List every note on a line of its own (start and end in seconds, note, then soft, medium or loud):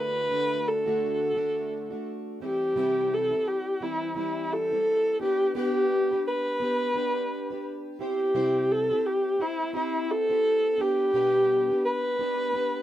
0.00 0.29 D3 medium
0.00 0.30 A3 medium
0.00 0.31 D4 medium
0.00 0.31 F#4 medium
0.00 0.69 B4 loud
0.30 0.86 D3 medium
0.30 0.86 A3 medium
0.30 0.85 D4 medium
0.30 0.85 F#4 medium
0.68 2.07 A4 medium
0.86 1.33 D3 medium
0.86 1.35 A3 medium
0.86 1.36 D4 medium
0.86 1.35 F#4 medium
1.35 1.91 D3 medium
1.35 1.92 A3 medium
1.35 1.91 D4 medium
1.35 1.89 F#4 medium
1.90 2.41 A3 soft
1.90 2.41 D4 medium
1.90 2.40 F#4 medium
2.40 2.75 E3 medium
2.40 2.75 G3 medium
2.40 2.76 C4 medium
2.40 2.76 E4 medium
2.40 3.15 G4 medium
2.75 3.32 C3 medium
2.75 3.32 E3 medium
2.75 3.32 G3 medium
2.75 3.31 C4 medium
2.75 3.30 E4 medium
3.13 3.49 A4 medium
3.31 3.80 G3 soft
3.31 3.81 C4 soft
3.31 3.80 E4 soft
3.48 3.84 G4 medium
3.80 4.13 E3 medium
3.80 4.15 G3 medium
3.80 4.16 C4 medium
3.80 4.17 E4 medium
3.80 4.16 E4 medium
4.15 4.71 E3 medium
4.15 4.72 G3 medium
4.15 4.71 C4 medium
4.15 4.54 E4 medium
4.15 4.70 E4 medium
4.52 5.21 A4 medium
4.71 5.21 G3 soft
4.71 5.21 C4 soft
4.71 5.20 E4 medium
5.20 5.54 B3 medium
5.20 5.54 D4 medium
5.20 5.55 G4 medium
5.20 5.54 G4 medium
5.20 5.55 B4 medium
5.55 6.11 B3 medium
5.55 6.12 D4 medium
5.55 6.11 G4 medium
5.55 6.23 G4 loud
5.55 6.10 B4 medium
6.11 6.60 D4 soft
6.11 6.61 G4 soft
6.11 6.60 B4 medium
6.27 7.62 B4 loud
6.60 6.93 B3 medium
6.60 6.94 D4 medium
6.60 6.95 G4 medium
6.60 6.95 B4 medium
6.94 7.51 B3 medium
6.94 7.51 D4 medium
6.94 7.51 G4 medium
6.94 7.49 B4 medium
7.50 8.00 D4 soft
7.50 8.00 G4 medium
7.50 8.00 B4 medium
7.99 8.34 C4 medium
7.99 8.34 E4 medium
7.99 8.34 G4 medium
7.99 8.73 G4 medium
7.99 8.34 C5 medium
8.34 8.91 C3 medium
8.34 8.91 G3 medium
8.34 8.91 C4 medium
8.34 8.91 E4 medium
8.34 8.90 G4 medium
8.34 8.89 C5 medium
8.71 9.07 A4 medium
8.90 9.38 C4 soft
8.90 9.38 E4 medium
8.90 9.40 G4 soft
8.90 9.39 C5 medium
9.06 9.43 G4 medium
9.39 9.72 C4 medium
9.39 9.73 E4 medium
9.39 9.76 E4 medium
9.39 9.74 G4 medium
9.39 9.75 C5 medium
9.73 10.30 C4 medium
9.73 10.30 E4 medium
9.73 10.12 E4 medium
9.73 10.29 G4 medium
9.73 10.28 C5 medium
10.11 10.82 A4 loud
10.29 10.78 C4 soft
10.29 10.79 E4 soft
10.29 10.78 G4 medium
10.29 10.79 C5 medium
10.78 11.13 B3 medium
10.78 11.13 D4 medium
10.78 11.14 G4 medium
10.78 11.84 G4 loud
10.78 11.14 B4 medium
11.13 11.70 B2 medium
11.13 11.70 G3 medium
11.13 11.70 B3 medium
11.13 11.70 D4 medium
11.13 11.70 G4 medium
11.13 11.69 B4 medium
11.70 12.18 B3 soft
11.70 12.19 D4 soft
11.70 12.20 G4 soft
11.70 12.19 B4 soft
11.85 12.82 B4 loud
12.19 12.52 B3 medium
12.19 12.53 D4 medium
12.19 12.54 G4 medium
12.19 12.54 B4 medium
12.53 12.82 B3 medium
12.53 12.82 D4 medium
12.53 12.82 G4 medium
12.53 12.82 B4 medium